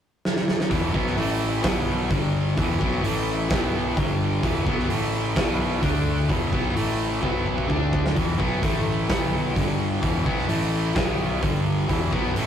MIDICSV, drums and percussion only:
0, 0, Header, 1, 2, 480
1, 0, Start_track
1, 0, Tempo, 465477
1, 734, Time_signature, 4, 2, 24, 8
1, 12854, End_track
2, 0, Start_track
2, 0, Title_t, "Drums"
2, 261, Note_on_c, 9, 38, 65
2, 364, Note_off_c, 9, 38, 0
2, 374, Note_on_c, 9, 38, 66
2, 477, Note_off_c, 9, 38, 0
2, 496, Note_on_c, 9, 38, 92
2, 599, Note_off_c, 9, 38, 0
2, 621, Note_on_c, 9, 38, 97
2, 724, Note_off_c, 9, 38, 0
2, 731, Note_on_c, 9, 36, 102
2, 736, Note_on_c, 9, 46, 62
2, 835, Note_off_c, 9, 36, 0
2, 839, Note_off_c, 9, 46, 0
2, 972, Note_on_c, 9, 36, 93
2, 1075, Note_off_c, 9, 36, 0
2, 1098, Note_on_c, 9, 38, 31
2, 1201, Note_off_c, 9, 38, 0
2, 1211, Note_on_c, 9, 46, 70
2, 1314, Note_off_c, 9, 46, 0
2, 1688, Note_on_c, 9, 46, 65
2, 1692, Note_on_c, 9, 36, 122
2, 1694, Note_on_c, 9, 38, 127
2, 1791, Note_off_c, 9, 46, 0
2, 1795, Note_off_c, 9, 36, 0
2, 1797, Note_off_c, 9, 38, 0
2, 2171, Note_on_c, 9, 46, 56
2, 2173, Note_on_c, 9, 36, 99
2, 2274, Note_off_c, 9, 46, 0
2, 2276, Note_off_c, 9, 36, 0
2, 2656, Note_on_c, 9, 36, 102
2, 2658, Note_on_c, 9, 46, 54
2, 2759, Note_off_c, 9, 36, 0
2, 2761, Note_off_c, 9, 46, 0
2, 2896, Note_on_c, 9, 36, 97
2, 2999, Note_off_c, 9, 36, 0
2, 3138, Note_on_c, 9, 46, 63
2, 3241, Note_off_c, 9, 46, 0
2, 3611, Note_on_c, 9, 46, 61
2, 3616, Note_on_c, 9, 36, 119
2, 3617, Note_on_c, 9, 38, 127
2, 3714, Note_off_c, 9, 46, 0
2, 3720, Note_off_c, 9, 36, 0
2, 3720, Note_off_c, 9, 38, 0
2, 4095, Note_on_c, 9, 36, 105
2, 4095, Note_on_c, 9, 46, 53
2, 4198, Note_off_c, 9, 36, 0
2, 4198, Note_off_c, 9, 46, 0
2, 4571, Note_on_c, 9, 46, 54
2, 4572, Note_on_c, 9, 36, 105
2, 4675, Note_off_c, 9, 36, 0
2, 4675, Note_off_c, 9, 46, 0
2, 4812, Note_on_c, 9, 36, 95
2, 4915, Note_off_c, 9, 36, 0
2, 4942, Note_on_c, 9, 38, 32
2, 5045, Note_off_c, 9, 38, 0
2, 5052, Note_on_c, 9, 46, 63
2, 5155, Note_off_c, 9, 46, 0
2, 5531, Note_on_c, 9, 36, 119
2, 5531, Note_on_c, 9, 46, 68
2, 5537, Note_on_c, 9, 38, 127
2, 5634, Note_off_c, 9, 36, 0
2, 5634, Note_off_c, 9, 46, 0
2, 5640, Note_off_c, 9, 38, 0
2, 6010, Note_on_c, 9, 36, 107
2, 6012, Note_on_c, 9, 46, 58
2, 6113, Note_off_c, 9, 36, 0
2, 6116, Note_off_c, 9, 46, 0
2, 6491, Note_on_c, 9, 36, 104
2, 6496, Note_on_c, 9, 46, 56
2, 6594, Note_off_c, 9, 36, 0
2, 6600, Note_off_c, 9, 46, 0
2, 6731, Note_on_c, 9, 36, 88
2, 6834, Note_off_c, 9, 36, 0
2, 6977, Note_on_c, 9, 46, 65
2, 7080, Note_off_c, 9, 46, 0
2, 7454, Note_on_c, 9, 36, 70
2, 7557, Note_off_c, 9, 36, 0
2, 7694, Note_on_c, 9, 36, 68
2, 7797, Note_off_c, 9, 36, 0
2, 7816, Note_on_c, 9, 36, 64
2, 7919, Note_off_c, 9, 36, 0
2, 7938, Note_on_c, 9, 36, 81
2, 8042, Note_off_c, 9, 36, 0
2, 8178, Note_on_c, 9, 36, 104
2, 8281, Note_off_c, 9, 36, 0
2, 8309, Note_on_c, 9, 38, 83
2, 8412, Note_off_c, 9, 38, 0
2, 8419, Note_on_c, 9, 36, 104
2, 8419, Note_on_c, 9, 46, 57
2, 8522, Note_off_c, 9, 36, 0
2, 8522, Note_off_c, 9, 46, 0
2, 8658, Note_on_c, 9, 36, 91
2, 8761, Note_off_c, 9, 36, 0
2, 8899, Note_on_c, 9, 36, 117
2, 8901, Note_on_c, 9, 46, 60
2, 9002, Note_off_c, 9, 36, 0
2, 9004, Note_off_c, 9, 46, 0
2, 9378, Note_on_c, 9, 46, 64
2, 9381, Note_on_c, 9, 36, 127
2, 9385, Note_on_c, 9, 38, 124
2, 9482, Note_off_c, 9, 46, 0
2, 9484, Note_off_c, 9, 36, 0
2, 9488, Note_off_c, 9, 38, 0
2, 9862, Note_on_c, 9, 36, 105
2, 9867, Note_on_c, 9, 46, 57
2, 9965, Note_off_c, 9, 36, 0
2, 9970, Note_off_c, 9, 46, 0
2, 10342, Note_on_c, 9, 36, 109
2, 10343, Note_on_c, 9, 46, 59
2, 10445, Note_off_c, 9, 36, 0
2, 10446, Note_off_c, 9, 46, 0
2, 10582, Note_on_c, 9, 36, 95
2, 10685, Note_off_c, 9, 36, 0
2, 10712, Note_on_c, 9, 38, 30
2, 10815, Note_off_c, 9, 38, 0
2, 10818, Note_on_c, 9, 46, 61
2, 10921, Note_off_c, 9, 46, 0
2, 11301, Note_on_c, 9, 46, 59
2, 11302, Note_on_c, 9, 36, 118
2, 11307, Note_on_c, 9, 38, 120
2, 11404, Note_off_c, 9, 46, 0
2, 11405, Note_off_c, 9, 36, 0
2, 11410, Note_off_c, 9, 38, 0
2, 11784, Note_on_c, 9, 36, 114
2, 11789, Note_on_c, 9, 46, 51
2, 11887, Note_off_c, 9, 36, 0
2, 11892, Note_off_c, 9, 46, 0
2, 12265, Note_on_c, 9, 36, 98
2, 12267, Note_on_c, 9, 46, 55
2, 12368, Note_off_c, 9, 36, 0
2, 12371, Note_off_c, 9, 46, 0
2, 12506, Note_on_c, 9, 36, 93
2, 12609, Note_off_c, 9, 36, 0
2, 12746, Note_on_c, 9, 46, 59
2, 12849, Note_off_c, 9, 46, 0
2, 12854, End_track
0, 0, End_of_file